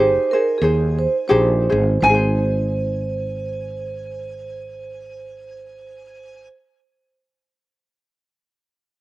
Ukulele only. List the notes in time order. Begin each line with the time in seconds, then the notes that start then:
Already playing: D#4 G4 G#4 C5
0.33 D#4 G#4 C5
0.62 D#4 G#4 C5
1.29 D#4 G4 G#4 C5
1.69 D#4 G#4 C5
2.03 D#4
2.09 G#4
2.14 C5